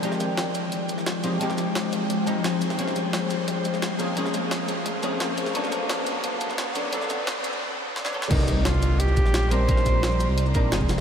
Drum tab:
CC |----------------|----------------|----------------|----------------|
HH |x-x-x-x-x-x-x-x-|x-x-x-x-x-x-x-x-|x-x-x-x-x-x-x-x-|x-x-x-x-x-x-x-x-|
SH |--x---x---x---x-|--x---x---x---x-|--x---x---x---x-|--x---x---x---x-|
SD |-oo-o------oo---|-oo-o-------o--o|-oo-o------oo---|-oo-o-------o--o|
BD |----------------|----------------|----------------|----------------|

CC |----------------|----------------|x---------------|----------------|
HH |x-x-x-x-x-x-x-x-|x-x-x-x---------|x-x-x-x-x-x-x-x-|x-x-x-x-x-x-x-x-|
SH |--x---x---x---x-|--x-x-xx--------|--x--xx--xx--xx-|--x--xx--xx--xx-|
SD |-oo-o------oo---|-oo-o-------oo-o|-oo-o------oo---|-oo-o-------o-o-|
BD |----------------|----------------|o---------o-----|o-o-------o--o--|